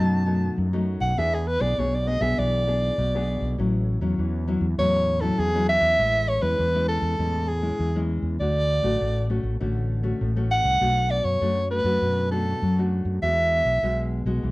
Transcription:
Already playing: F#2 B2 F#3 A3 A5
0.00 D#4
0.26 F#3 A3 D#4
0.57 F#2
0.73 F#3 A3 D#4
1.01 B1 F#5
1.17 E2 E3 B3 D4 G#4 E5
1.35 G#4
1.47 B4
1.60 B1 B3 D4 G#4 D5
1.78 B1 B2 B3 D4 G#4 C#5
1.95 D5
2.07 B3 D4 G#4 D#5
2.21 B1 B3 D4 G#4 E5
2.38 B1 E3 D5
2.67 B3 D4 G#4
2.98 B1 B2
3.15 B3 D4 G#4
3.41 B1
3.58 A1 A2 F#3 C#4 E4
4.01 E2 F#3 C#4 E4
4.18 E2 E3
4.48 F#3 C#4 E4
4.61 E2
4.78 E2 A2 F#3 C#4 E4 C#5
5.21 F#3 C#4 E4 A4
5.39 E2 E3 G#4
5.55 F#3 C#4 E4
5.69 E5
5.82 E2
5.99 A1 A2 G#3 C#4 E4
6.28 C#5
6.41 E2 G#3 C#4 E4 B4
6.59 E2 E3
6.75 G#3 C#4 E4
6.88 A4
7.02 E2
7.19 E2 A2 G#3 C#4 E4
7.48 G#4
7.62 G#3 C#4 E4
7.80 E2 E3
7.96 G#3 C#4 E4
8.22 E2
8.40 D2 D3 A3 F#4 D5
8.83 A1 A3 F#4
9.00 A1 A2
9.29 A3 C#4 F#4
9.43 A1
9.60 A1 D3 A3 C#4 F#4
10.03 A3 C#4 F#4
10.21 A1 A2
10.36 A3 C#4 F#4
10.51 F#5
10.64 C2
10.81 B1 B2 A3 D4 F#4
11.11 D5
11.24 F#2 C#5
11.41 F#2 F#3 A3 D4 F#4
11.70 A3 D4 F#4 B4
11.84 F#2 A3 D4 F#4
12.02 F#2 B2
12.31 A3 D4 F#4 A4
12.62 F#2 F#3
12.78 A3 D4 F#4
13.05 F#2
13.22 E2 E3 G#3 B3 F#4 E5
13.65 B1
13.83 B1 B2 G#3 B3 F#4
14.25 B1 G#3 B3 F#4
14.43 B1 E3

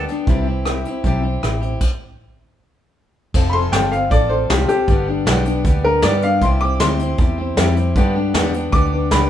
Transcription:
0.08 G3 B3 D4 G4, closed hi-hat
0.27 C2 C3 G3 C4 E4 G4, kick, closed hi-hat
0.47 C4 E4 G4
0.66 G3 C4 E4 G4, cross-stick, closed hi-hat
0.85 E4 G4, closed hi-hat
0.89 C4
1.04 B1 C3 G3 C4 E4 G4, kick, closed hi-hat
1.23 C4 E4 G4
1.42 A1 G3 C4 E4 G4, cross-stick, closed hi-hat
1.61 C4 E4 G4, closed hi-hat
1.81 kick, crash
3.34 F1 F3 C4 F4 A4, kick, crash
3.49 B5 C6
3.54 C4 F4 A4
3.72 G1 F3 C4 F4 A4 G5, snare, closed hi-hat
3.91 C4 F4 A4 F5, closed hi-hat
4.10 A1 F3 C4 F4 A4 D5, kick, closed hi-hat
4.29 C4 F4 A4 C5
4.50 C2 F3 C4 F4 G4 A4, snare, closed hi-hat
4.69 C4 F4 G4 A4, muted fingered electric bass stroke, closed hi-hat
4.88 G1 G2 D3 G3 B3 D4 G4, kick, closed hi-hat
5.08 G3 B3 D4 G4
5.26 B1 G2 D3 G3 B3 D4 G4, snare, closed hi-hat
5.45 G3 B3 D4 G4, closed hi-hat
5.64 D2 G3 B3 D4 G4, kick, closed hi-hat
5.83 G3 B3 D4 G4 A#4
6.02 G2 D3 G3 B3 D4 G4 D5, snare, closed hi-hat
6.22 G3 B3 D4 G4 F5, closed hi-hat
6.41 C2 C3 G3 C4 E4 G4 C6, kick, closed hi-hat
6.61 C4 E4 G4 D6
6.80 D2 C3 G3 C4 E4 G4 C6, snare, closed hi-hat
6.99 C4 E4 G4, closed hi-hat
7.18 E2 G3 C4 E4 G4, kick, closed hi-hat
7.38 C4 E4 G4
7.57 F2 C3 G3 C4 E4 G4, snare, closed hi-hat
7.76 C4 E4 G4, closed hi-hat
7.96 G2 D3 G3 B3 D4 G4, kick, closed hi-hat
8.15 G3 B3 D4 G4
8.34 E2 G2 D3 G3 B3 D4 G4, snare, closed hi-hat
8.54 G3 B3 D4 G4, closed hi-hat
8.72 D2 G3 B3 D4 G4 D6, kick, closed hi-hat
8.92 G3 B3 D4 G4
9.11 C#2 G2 D3 G3 B3 D4 G4 B5, snare, closed hi-hat

